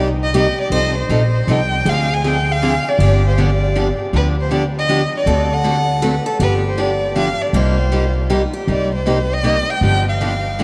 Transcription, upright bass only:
0.00 0.48 C2 medium
0.70 1.01 C2 medium
1.09 1.42 A#1 medium
1.47 1.80 C2 medium
1.85 2.77 D2 medium
2.99 3.90 G1 medium
4.13 5.04 D2 medium
5.26 6.17 D2 medium
6.40 7.31 G1 medium
7.53 8.45 C2 medium
8.67 9.59 C2 medium
9.81 10.64 G1 medium

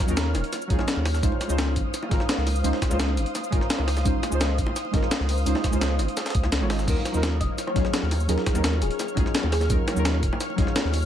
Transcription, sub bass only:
0.08 0.36 D#2 medium
0.35 0.43 D#1 medium
0.70 0.78 C#2 medium
0.96 1.22 D#2 medium
1.23 1.31 C#2 loud
1.49 1.78 C#2 loud
1.76 1.84 G#1 medium
2.11 2.19 G#1 medium
2.38 2.63 C#2 medium
2.64 2.72 C#2 loud
2.91 3.19 C#2 loud
3.17 3.25 G#1 medium
3.53 3.60 G#1 medium
3.79 4.04 C#2 medium
4.05 4.13 C#2 loud
4.32 4.60 C#2 loud
4.58 4.66 G#1 medium
4.94 5.02 G#1 medium
5.20 5.45 C#2 medium
5.47 5.55 C#2 loud
5.73 6.01 C#2 loud
5.99 6.07 G#1 medium
6.35 6.63 C#2 medium
6.61 6.86 G#1 medium
6.88 6.96 D#2 medium
7.14 7.42 D#2 loud
7.41 7.49 D#1 medium
7.76 7.84 C#2 medium
8.03 8.28 D#2 medium
8.29 8.37 D#2 loud
8.55 8.83 D#2 loud
8.82 8.90 D#1 medium
9.17 9.25 C#2 medium
9.43 9.69 D#2 medium
9.70 9.78 D#2 loud
9.96 10.24 D#2 medium
10.23 10.31 D#1 medium
10.58 10.66 C#2 medium
10.85 11.05 D#2 medium

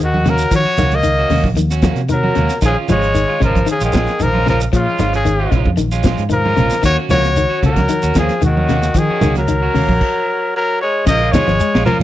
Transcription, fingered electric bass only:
0.00 0.44 D#2 loud
0.52 0.64 D#3 loud
0.65 muted fingered electric bass stroke soft
0.78 1.24 C#2 loud
1.30 1.42 D#2 medium
1.43 1.54 A#1 medium
1.54 1.90 D#2 medium
1.96 2.30 C3 medium
2.37 2.48 D#2 medium
2.62 2.74 A#1 loud
2.89 3.24 G#1 loud
3.29 muted fingered electric bass stroke soft
3.42 3.65 G#1 medium
3.81 3.93 A#1 medium
3.94 4.06 A#1 loud
4.21 4.67 A#1 loud
4.73 4.85 A#2 loud
4.87 muted fingered electric bass stroke soft
5.00 5.46 G#1 loud
5.52 5.64 A#1 medium
5.65 5.77 F2 medium
5.78 6.13 A#1 medium
6.19 6.53 G#2 medium
6.57 6.70 A#1 medium
6.84 6.96 D#2 loud
7.09 7.45 C#2 loud
7.50 muted fingered electric bass stroke soft
7.63 7.86 C#2 loud
8.03 8.15 D#2 medium
8.16 8.28 D#2 loud
8.43 8.89 D#2 loud
8.95 9.07 D#3 loud
9.10 muted fingered electric bass stroke soft
9.22 9.68 C#2 loud
9.75 9.87 D#2 medium
9.89 10.00 A#1 medium
11.07 11.30 A#1 loud
11.47 11.58 G#1 medium
11.75 11.85 A#1 loud
11.99 12.03 A#2 loud

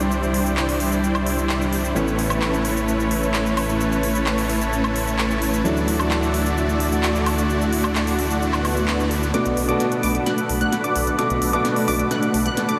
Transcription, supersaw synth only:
0.00 1.93 G3 medium
0.00 1.93 D4 medium
0.00 1.93 E4 medium
0.00 1.93 C5 medium
0.00 1.93 D5 medium
1.96 5.62 A3 medium
1.96 5.62 C#4 medium
1.96 5.62 E4 medium
1.96 5.62 B4 medium
1.96 5.62 C#5 medium
5.65 9.31 A3 medium
5.65 9.31 D4 medium
5.65 9.31 E4 medium
5.65 9.31 F#4 medium
5.65 9.31 D5 medium
9.34 9.66 A3 medium
9.34 9.66 D4 medium
9.34 9.66 F#4 medium
9.34 9.66 B4 medium
9.34 9.66 D5 medium
9.69 10.01 A3 medium
9.69 10.01 D4 medium
9.69 10.01 F#4 medium
9.69 10.01 B4 medium
9.69 10.01 D5 medium
10.03 10.24 A3 medium
10.03 10.24 D4 medium
10.03 10.24 F#4 medium
10.03 10.24 B4 medium
10.03 10.24 D5 loud
10.26 10.58 A3 medium
10.26 10.58 D4 medium
10.26 10.58 F#4 medium
10.26 10.58 B4 medium
10.26 10.58 F#5 medium
10.61 10.81 A3 medium
10.61 10.81 D4 medium
10.61 10.81 F#4 medium
10.61 10.81 B4 medium
10.61 10.81 F#5 loud
10.84 11.16 A3 medium
10.84 11.16 D4 medium
10.84 11.16 F#4 medium
10.84 11.16 B4 medium
10.84 11.16 D5 medium
11.19 11.51 A3 medium
11.19 11.51 D4 medium
11.19 11.51 F#4 medium
11.19 11.51 B4 medium
11.19 11.51 D5 medium
11.53 11.85 A3 medium
11.53 11.85 D4 medium
11.53 11.85 F#4 medium
11.53 11.85 B4 medium
11.53 11.85 D5 medium
11.88 12.08 A3 medium
11.88 12.08 D4 medium
11.88 12.08 F#4 medium
11.88 12.08 B4 medium
11.88 12.08 D5 loud
12.11 12.43 A3 medium
12.11 12.43 D4 medium
12.11 12.43 F#4 medium
12.11 12.43 B4 medium
12.11 12.43 F#5 medium
12.46 12.66 A3 medium
12.46 12.66 D4 medium
12.46 12.66 F#4 medium
12.46 12.66 B4 medium
12.46 12.66 F#5 loud
12.69 12.79 A3 medium
12.69 12.79 D4 medium
12.69 12.79 F#4 medium
12.69 12.79 B4 medium
12.69 12.79 D5 medium

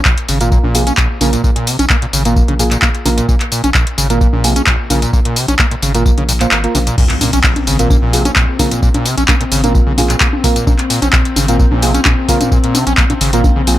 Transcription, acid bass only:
0.05 0.15 A#1 loud
0.29 0.39 C#3 medium
0.41 0.50 A#2 medium
0.52 0.58 A#2 medium
0.64 0.76 A#2 loud
0.75 0.85 C3 medium
0.87 0.93 C#4 loud
0.98 1.08 A#1 loud
1.21 1.31 C#3 medium
1.33 1.42 A#2 medium
1.44 1.51 A#2 loud
1.56 1.69 A#2 loud
1.67 1.77 C3 medium
1.79 1.85 C#4 loud
1.90 1.97 A#3 medium
2.02 2.06 A#2 loud
2.13 2.23 C#3 medium
2.25 2.34 A#2 medium
2.36 2.43 A#1 medium
2.48 2.54 C#3 medium
2.59 2.63 A#2 loud
2.71 2.77 A#2 medium
2.82 2.89 A#3 medium
3.06 3.10 C3 loud
3.18 3.27 A#2 medium
3.29 3.35 A#2 medium
3.52 3.62 A#2 medium
3.64 3.70 C#4 loud
3.75 3.85 A#1 loud
3.98 4.08 C#3 medium
4.10 4.19 A#2 medium
4.33 4.45 A#2 loud
4.44 4.54 C3 medium
4.56 4.62 C#4 loud
4.67 4.77 A#1 loud
4.90 5.00 C#3 medium
5.02 5.11 A#2 medium
5.13 5.20 A#2 loud
5.25 5.38 A#2 loud
5.36 5.46 C3 medium
5.48 5.54 C#4 loud
5.59 5.66 A#3 medium
5.71 5.75 A#2 loud
5.82 5.92 C#3 medium
5.95 6.04 A#2 medium
6.18 6.24 C#3 medium
6.29 6.33 A#2 loud
6.41 6.47 A#2 medium
6.52 6.58 A#3 medium
6.75 6.79 C3 loud
6.87 6.96 A#2 medium
6.98 7.05 A#2 medium
7.21 7.31 A#2 medium
7.33 7.39 C#4 loud
7.44 7.54 A#1 loud
7.67 7.77 C#3 medium
7.79 7.88 A#2 medium
7.90 7.97 A#2 medium
8.02 8.15 A#2 loud
8.13 8.23 C3 medium
8.25 8.31 C#4 loud
8.36 8.46 A#1 loud
8.59 8.69 C#3 medium
8.71 8.81 A#2 medium
8.82 8.89 A#2 loud
8.94 9.07 A#2 loud
9.05 9.15 C3 medium
9.17 9.24 C#4 loud
9.28 9.35 A#3 medium
9.40 9.44 A#2 loud
9.52 9.62 C#3 medium
9.64 9.73 A#2 medium
9.75 9.81 A#1 medium
9.87 9.93 C#3 medium
9.98 10.02 A#2 loud
10.10 10.16 A#2 medium
10.21 10.27 A#3 medium
10.44 10.48 C3 loud
10.56 10.65 A#2 medium
10.67 10.74 A#2 medium
10.90 11.00 A#2 medium
11.02 11.08 C#4 loud
11.13 11.23 A#1 loud
11.36 11.46 C#3 medium
11.48 11.57 A#2 medium
11.59 11.66 A#2 medium
11.71 11.84 A#2 loud
11.82 11.92 C3 medium
11.94 12.01 C#4 loud
12.05 12.15 A#1 loud
12.28 12.38 C#3 medium
12.40 12.50 A#2 medium
12.52 12.58 A#2 loud
12.64 12.76 A#2 loud
12.75 12.85 C3 medium
12.87 12.93 C#4 loud
12.98 13.04 A#3 medium
13.10 13.14 A#2 loud
13.21 13.31 C#3 medium
13.33 13.42 A#2 medium
13.44 13.51 A#1 medium
13.56 13.62 C#3 medium
13.67 13.79 A#1 medium

